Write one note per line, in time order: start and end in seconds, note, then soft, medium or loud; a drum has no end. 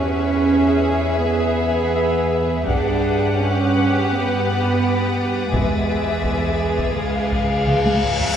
0.00 2.64 E2 medium
0.00 1.22 C#4 medium
0.00 2.64 G#4 medium
0.00 2.68 G#4 medium
0.00 0.90 B4 soft
0.00 2.64 B4 soft
0.00 2.64 B4 medium
0.00 2.65 E5 soft
0.00 2.68 E5 soft
0.00 0.90 F#5 soft
1.26 2.68 B3 medium
1.96 4.10 E5 soft
2.68 5.49 G2 medium
2.68 3.38 D4 medium
2.68 5.50 G4 medium
2.68 5.54 G4 medium
2.68 8.35 B4 medium
2.68 8.15 B4 medium
2.68 5.50 F#5 medium
2.68 5.54 F#5 soft
2.68 8.00 D6 soft
2.68 7.28 D#6 soft
2.68 taiko medium
3.40 4.11 C#4 medium
3.74 5.89 F#5 medium
4.11 5.54 B3 medium
4.11 8.00 A6 soft
5.53 6.96 E2 soft
5.53 6.93 G#3 medium
5.53 8.15 G#4 soft
5.53 8.37 G#4 medium
5.53 6.93 E5 soft
5.53 6.97 E5 soft
5.53 taiko medium
5.53 reverse cymbal medium
6.24 taiko medium
6.78 taiko medium
6.96 8.19 C#2 soft
6.96 7.66 G#3 soft
6.96 8.37 F5 soft
6.96 8.16 F5 soft
7.32 taiko soft
7.66 8.37 F4 soft
7.66 8.37 F5 soft
7.66 taiko mid medium
7.86 taiko high medium
8.03 taiko low-mid medium
8.21 taiko low medium